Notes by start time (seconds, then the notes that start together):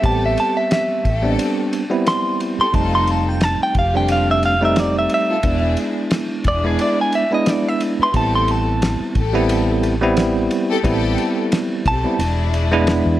0.02 A1 G3 B3 C4 G4 A4 A5, kick, ride
0.26 E5
0.37 A5, ride
0.57 E5
0.71 E5, snare, ride
1.05 A1 G4 A4, kick, ride
1.22 G3 B3 C4 D4
1.39 ride
1.73 ride
1.90 G3 B3 C4 E4
2.07 C6, snare, ride
2.40 ride
2.58 G4 A4 C6, muted fingered electric bass stroke
2.73 F1 G3 A3 C4 D#4 F4 A4 A5, kick, ride
2.95 C6
3.07 A5, ride
3.29 G5
3.41 A5, snare, ride
3.60 G5, muted fingered electric bass stroke
3.75 F1 F4 G4 F5, kick, ride
3.94 G3 A3 C4 D4 G5
4.08 F5, ride
4.31 E5
4.43 F5, ride
4.61 G3 A3 C4 D#4
4.65 E5
4.76 D5, snare, ride
4.99 E5
5.10 ride
5.14 E5
5.29 F4 A4
5.43 E1 G#3 B3 D4 E4 G#4, kick, ride
5.77 ride
6.11 snare, ride
6.44 E1 D4 E4 G#4 D5, kick, ride
6.64 G#3 B3 D4 E4 G#4
6.79 D5, ride
7.01 G#5
7.12 E5, ride
7.31 G#3 B3 D4 E4 D#5
7.46 D5, snare, ride
7.69 E5
7.80 ride
7.99 E4 B4 C6, muted fingered electric bass stroke
8.14 A1 G3 B3 C4 E4 G4 A4 A5, kick, ride
8.35 C6
8.48 A5, ride
8.82 snare, ride
9.00 muted fingered electric bass stroke
9.15 A1 G4 A4, kick, ride
9.33 G3 B3 C4 E4
9.49 ride
9.83 ride
10.01 G3 B3 C4 E4
10.17 snare, ride
10.51 ride
10.70 G4 A4
10.84 A1 G3 B3 C4 E4 G4 A4, kick, ride
11.18 ride
11.52 snare, ride
11.86 B1 C4 G4 A4 A5, kick, ride
12.04 G3 B3 C4 E4
12.19 E1 G#3 D4 E4, ride
12.54 ride
12.71 G#3 B3 D4 E4
12.87 snare, ride
13.06 E2